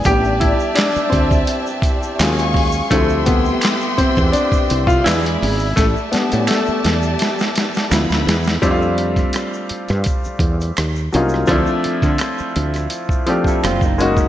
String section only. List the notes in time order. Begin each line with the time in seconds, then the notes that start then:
Already playing: D5
0.05 G4 E5 A5
2.19 G#4 F5 G#5 C#6
2.91 G4 E5 G5 C6
5.05 G#4 D5 E5 B5
5.76 G4 D5 A5
7.90 E4 B5